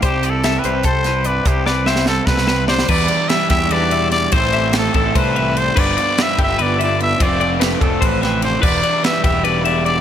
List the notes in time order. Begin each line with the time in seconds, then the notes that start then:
Already playing: G3 G4
0.02 C2 C3 D4 G4 C5, kick, closed hi-hat
0.14 E4
0.23 D5, closed hi-hat
0.30 A4
0.44 G4 E5, snare, closed hi-hat
0.59 B4
0.64 C2 G3 C5, closed hi-hat
0.83 C2 A4 C5, kick, closed hi-hat
1.04 E4 B4, snare, closed hi-hat
1.24 G2 B4 D5, closed hi-hat
1.45 C2 C3 E4 G4 C5, kick, closed hi-hat
1.66 B4 D5, snare
1.86 G4 C5 E5, snare
1.96 snare
2.06 G3 A4 C5, snare
2.26 C2 B2 A4 B4, kick, snare
2.37 snare
2.48 C3 B4, snare
2.68 D3 C5 D5, snare
2.79 snare
2.88 E2 E3 G3 B3 E4 B4 D5, kick, crash
3.08 D4 D5, ride
3.28 G3 G4 B4 E5, snare, ride
3.50 E2 E4 G4 E5, kick, snare, ride
3.71 E2 D4 B4 D5, ride
3.91 B2 E4 E5, ride
4.11 D4 D5, snare, ride
4.32 A1 A2 E3 A3 C4 C5, kick, ride
4.36 E4
4.53 C4 E5, ride
4.73 A3 G4 C5, snare, ride
4.78 A4
4.94 A1 E4 A4, kick, ride
5.15 C2 C4 B4 C5, kick, ride
5.36 E3 E4 E5, ride
5.56 C4 C5 D5, ride
5.75 G1 G2 D3 F3 B3 F4 B4, kick, crash
5.79 D5
5.97 B3 D5, ride
6.18 G3 B4, snare, ride
6.22 E5
6.38 G1 D4 G4, kick, ride
6.43 E5
6.48 F4
6.59 G1 B3 B4 D5, ride
6.79 D3 F4 E5, ride
6.83 D5
6.99 B3 D5 E5, ride
7.19 F1 F3 A3 C4 D4 F4 C5 D5, kick, ride
7.24 A4
7.41 D4 D5, ride
7.59 C4 G4 B4, snare, ride
7.71 A4
7.81 F1 D4 A4, kick, ride
8.01 A1 D4 B4 C5, kick, ride
8.21 C3 G4 B4 E5, snare, ride
8.35 A4
8.42 D4 C5 D5, ride
8.60 E1 E3 G3 B3 B4 D5, kick, crash
8.64 E4
8.83 D4 D5, ride
9.03 G3 G4 B4 E5, snare, ride
9.23 E1 E4 G4 E5, kick, ride
9.44 E1 D4 B4 D5, ride
9.64 B2 E4 D5 E5, ride
9.86 D4 D5, ride